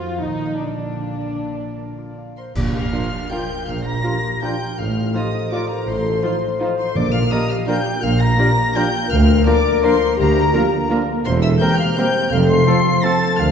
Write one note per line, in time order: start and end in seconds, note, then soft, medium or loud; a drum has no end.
0.00 0.20 F2 medium
0.00 0.21 F3 medium
0.00 3.73 F3 medium
0.00 0.22 C4 soft
0.00 0.22 D#4 soft
0.00 0.20 F4 medium
0.00 0.21 F4 medium
0.00 0.22 A4 soft
0.00 0.22 C5 soft
0.00 0.22 D#5 soft
0.00 0.20 F5 medium
0.20 2.37 A#1 medium
0.20 1.38 A#2 medium
0.20 0.59 D#3 medium
0.20 0.60 D#4 medium
0.20 0.59 D#5 medium
0.39 1.57 A#3 soft
0.59 2.18 D3 medium
0.59 2.17 D4 medium
0.59 2.18 D4 medium
0.59 2.15 D4 medium
0.59 1.19 A#4 soft
0.59 2.14 D5 soft
0.80 1.97 F4 soft
1.00 2.17 F5 soft
1.20 1.76 A#4 soft
1.39 2.54 A#2 medium
1.58 4.79 A#3 soft
1.78 2.37 A#4 soft
1.98 5.88 F4 soft
2.18 3.30 F5 medium
2.36 2.91 A#4 soft
2.36 2.55 C5 medium
2.36 2.44 C6 medium
2.55 2.86 A#1 medium
2.55 2.86 A#2 medium
2.55 3.66 A#2 medium
2.55 3.08 A#2 medium
2.55 2.90 G4 medium
2.55 2.62 D5 medium
2.55 2.62 D6 medium
2.55 concert bass drum medium
2.55 crash medium
2.73 3.84 D4 medium
2.73 3.32 F5 medium
2.73 3.30 F6 loud
2.92 3.06 F3 medium
2.92 3.00 F3 medium
2.92 3.00 D4 medium
2.92 3.07 D4 medium
2.92 3.31 F4 medium
2.92 3.01 F4 medium
2.92 3.07 F4 medium
2.92 3.01 A#4 medium
2.92 3.48 A#4 medium
3.13 4.23 D5 medium
3.30 3.39 F3 medium
3.30 3.44 F3 medium
3.30 3.44 D4 medium
3.30 3.39 D4 medium
3.30 3.39 F4 medium
3.30 3.44 F4 medium
3.30 3.39 A#4 medium
3.30 4.04 A#4 medium
3.30 4.42 F5 medium
3.30 3.66 G5 medium
3.30 3.67 G6 loud
3.50 4.03 A#4 medium
3.66 3.97 A#1 medium
3.66 3.97 A#2 medium
3.66 4.79 A#2 medium
3.66 3.87 F5 medium
3.66 3.84 F6 loud
3.85 4.79 D4 soft
3.85 4.44 A#5 loud
3.85 4.41 A#6 loud
4.02 4.11 F3 medium
4.02 4.18 F3 medium
4.02 4.11 D4 medium
4.02 4.18 D4 medium
4.02 4.11 F4 medium
4.02 4.17 F4 medium
4.02 4.41 G4 medium
4.02 4.10 A#4 medium
4.02 4.60 A#4 medium
4.24 4.80 D5 medium
4.41 4.49 F3 medium
4.41 4.55 F3 medium
4.41 4.49 D4 medium
4.41 4.55 D4 medium
4.41 5.13 F4 medium
4.41 4.55 F4 medium
4.41 4.50 F4 medium
4.41 4.50 A#4 medium
4.41 5.51 F5 medium
4.41 4.80 G5 loud
4.41 4.77 G6 loud
4.61 4.80 A#4 medium
4.78 5.07 A1 medium
4.78 5.08 A1 medium
4.78 5.07 A2 medium
4.78 5.86 A2 medium
4.78 5.14 F5 medium
4.78 5.14 F6 loud
4.96 6.03 D#4 medium
5.14 5.22 F3 medium
5.14 5.28 F3 medium
5.14 5.22 D#4 medium
5.14 5.28 D#4 medium
5.14 5.27 F4 medium
5.14 5.22 F4 medium
5.14 5.51 G4 medium
5.14 5.68 C5 medium
5.14 5.22 C5 medium
5.14 5.51 D#5 medium
5.14 5.52 D#6 medium
5.33 6.41 D#5 medium
5.51 5.59 F3 medium
5.51 5.65 F3 medium
5.51 5.59 D#4 medium
5.51 5.65 D#4 medium
5.51 5.64 F4 medium
5.51 5.60 F4 medium
5.51 5.87 F4 medium
5.51 5.61 C5 medium
5.51 5.58 D5 medium
5.51 6.59 F5 medium
5.51 5.69 D6 loud
5.69 5.89 A#4 medium
5.69 6.22 C5 medium
5.69 5.86 A#5 medium
5.87 6.17 A1 medium
5.87 6.97 A2 medium
5.87 6.17 A2 medium
5.87 6.22 A4 loud
5.87 6.51 C5 medium
5.87 6.61 C6 loud
6.04 6.97 D#4 medium
6.22 6.31 F3 medium
6.22 6.37 F3 medium
6.22 6.31 D#4 medium
6.22 6.37 D#4 medium
6.22 6.31 F4 medium
6.22 6.36 F4 medium
6.22 6.30 C5 medium
6.22 6.77 C5 medium
6.22 6.94 C5 loud
6.42 6.97 D#5 medium
6.59 6.67 F3 medium
6.59 6.74 F3 medium
6.59 6.67 D#4 medium
6.59 6.74 D#4 medium
6.59 6.74 F4 medium
6.59 6.69 F4 medium
6.59 6.69 C5 medium
6.59 7.66 F5 medium
6.78 6.97 C5 medium
6.78 6.98 C5 medium
6.78 6.95 C6 loud
6.95 7.25 A#1 medium
6.95 8.02 A#2 medium
6.95 7.46 A#2 loud
6.95 7.25 A#2 medium
6.95 7.30 A#4 loud
6.95 7.13 D5 loud
6.95 7.13 D6 loud
7.13 8.20 D4 medium
7.13 7.19 F5 loud
7.13 7.31 F6 loud
7.30 7.44 F3 medium
7.30 7.38 A#3 medium
7.30 7.43 D4 medium
7.30 7.38 D4 medium
7.30 7.39 F4 medium
7.30 7.68 G4 loud
7.30 7.45 A#4 medium
7.30 7.39 D5 medium
7.30 7.85 D5 medium
7.30 7.53 D#5 medium
7.30 7.50 D#6 loud
7.49 8.56 F4 medium
7.49 7.71 F5 medium
7.49 7.56 F6 loud
7.67 7.80 F3 medium
7.67 7.75 A#3 medium
7.67 7.80 D4 medium
7.67 7.75 D4 medium
7.67 8.03 F4 medium
7.67 7.75 F4 medium
7.67 7.81 A#4 medium
7.67 7.76 D5 medium
7.67 8.75 F5 medium
7.67 8.05 G5 loud
7.67 8.02 G6 loud
7.86 8.37 D5 medium
8.01 8.32 A#1 loud
8.01 8.32 A#2 loud
8.01 9.12 A#2 medium
8.01 8.38 A#4 loud
8.01 8.22 F5 loud
8.01 8.20 F6 loud
8.20 9.27 D4 medium
8.20 8.78 A#5 loud
8.20 8.75 A#6 loud
8.37 8.51 F3 medium
8.37 8.46 A#3 medium
8.37 8.51 D4 medium
8.37 8.46 D4 medium
8.37 8.47 F4 medium
8.37 8.74 G4 loud
8.37 8.52 A#4 medium
8.37 8.92 D5 medium
8.37 8.47 D5 medium
8.57 11.27 F4 medium
8.75 8.88 F3 medium
8.75 8.84 A#3 medium
8.75 8.88 D4 medium
8.75 8.84 D4 medium
8.75 9.10 F4 medium
8.75 8.83 F4 medium
8.75 8.88 A#4 medium
8.75 8.83 D5 medium
8.75 9.82 F5 medium
8.75 9.10 G5 loud
8.75 9.11 G6 loud
8.94 9.64 D5 medium
9.08 9.40 D2 loud
9.08 10.17 D3 medium
9.08 9.44 A#4 loud
9.08 9.45 F5 medium
9.08 9.46 F6 loud
9.28 10.34 D4 medium
9.45 9.59 F3 medium
9.45 9.53 A#3 medium
9.45 9.54 D4 medium
9.45 9.59 D4 medium
9.45 9.53 F4 medium
9.45 9.53 A#4 medium
9.45 10.17 A#4 loud
9.45 10.01 A#4 medium
9.45 9.60 A#4 medium
9.45 9.86 D5 loud
9.45 9.84 D6 loud
9.65 10.71 D5 medium
9.83 9.96 F3 medium
9.83 9.92 A#3 medium
9.83 9.96 D4 medium
9.83 9.92 D4 medium
9.83 9.91 F4 medium
9.83 9.91 A#4 medium
9.83 9.96 A#4 medium
9.83 10.18 C5 loud
9.83 10.90 F5 medium
9.83 10.18 C6 loud
10.02 10.53 A#4 medium
10.17 10.47 D2 loud
10.17 10.48 D2 loud
10.17 11.27 D3 loud
10.17 10.52 G4 loud
10.17 10.89 A#4 loud
10.17 10.89 A#5 loud
10.35 11.26 D4 medium
10.53 10.66 F3 medium
10.53 10.61 A#3 medium
10.53 10.66 D4 medium
10.53 10.61 D4 medium
10.53 10.90 F4 loud
10.53 10.61 F4 medium
10.53 10.62 A#4 medium
10.53 10.67 A#4 medium
10.53 11.07 A#4 medium
10.72 11.27 D5 medium
10.89 11.02 F3 medium
10.89 10.98 A#3 medium
10.89 11.02 D4 medium
10.89 10.98 D4 medium
10.89 10.98 F4 medium
10.89 11.25 A#4 loud
10.89 10.98 A#4 medium
10.89 11.03 A#4 medium
10.89 11.27 F5 medium
11.09 11.59 A#4 medium
11.25 11.54 E1 loud
11.25 11.54 E2 loud
11.25 12.33 E3 loud
11.25 11.61 A4 loud
11.25 11.41 C5 loud
11.25 11.32 C6 loud
11.42 13.41 C4 medium
11.42 11.49 E5 loud
11.42 11.49 E6 loud
11.59 11.74 G3 medium
11.59 11.69 A#3 medium
11.59 11.74 C4 medium
11.59 11.69 C4 medium
11.59 11.69 G4 medium
11.59 11.98 G4 loud
11.59 12.14 A#4 medium
11.59 11.74 A#4 medium
11.59 11.69 C5 medium
11.59 11.79 G5 loud
11.59 11.78 G6 loud
11.78 12.66 C5 medium
11.78 11.85 F5 loud
11.78 11.97 F6 loud
11.96 12.09 G3 medium
11.96 12.05 A#3 medium
11.96 12.09 C4 medium
11.96 12.05 C4 medium
11.96 12.06 G4 medium
11.96 12.11 A#4 medium
11.96 12.31 C5 loud
11.96 12.06 C5 medium
11.96 12.31 G5 loud
11.96 12.33 G5 loud
11.96 12.31 G6 loud
12.16 12.34 A#4 medium
12.31 12.61 F1 loud
12.31 12.61 F2 loud
12.31 13.51 F3 loud
12.31 12.66 A4 loud
12.31 12.37 F5 loud
12.31 12.49 F6 loud
12.48 13.51 F4 medium
12.48 13.05 C6 loud
12.48 13.03 C7 loud
12.66 12.79 F3 medium
12.66 12.75 A3 medium
12.66 12.80 C4 medium
12.66 12.75 C4 medium
12.66 13.04 F4 loud
12.66 12.75 F4 medium
12.66 12.81 A4 medium
12.66 12.75 C5 medium
12.66 13.21 C5 medium
12.86 13.51 F5 medium
13.03 13.17 F3 medium
13.03 13.12 A3 medium
13.03 13.16 C4 medium
13.03 13.12 C4 medium
13.03 13.12 F4 medium
13.03 13.39 A4 loud
13.03 13.17 A4 medium
13.03 13.12 C5 medium
13.03 13.41 A5 loud
13.03 13.38 A6 loud
13.22 13.41 C5 medium
13.39 13.51 D2 loud
13.39 13.51 D3 medium
13.39 13.51 A#4 loud
13.39 13.51 F5 loud
13.39 13.51 F6 loud